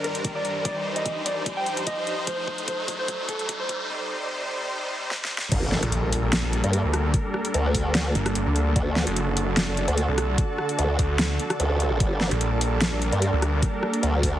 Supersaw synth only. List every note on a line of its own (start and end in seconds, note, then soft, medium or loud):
0.00 2.24 G2 medium
0.00 2.23 G3 medium
0.00 0.64 D4 medium
0.00 0.64 A#4 medium
0.65 5.48 D#4 medium
0.65 3.86 C5 medium
2.27 3.88 A2 medium
2.27 3.88 A3 medium
3.89 5.50 C3 medium
3.89 5.50 G3 medium
3.89 5.50 C5 medium
5.52 8.73 G3 medium
5.52 11.96 D4 medium
5.52 14.39 A4 medium
5.52 8.73 A#4 medium
8.76 11.97 D3 medium
8.76 11.97 F#4 medium
12.00 14.39 G3 medium
12.00 14.39 D4 medium
12.00 14.39 A#4 medium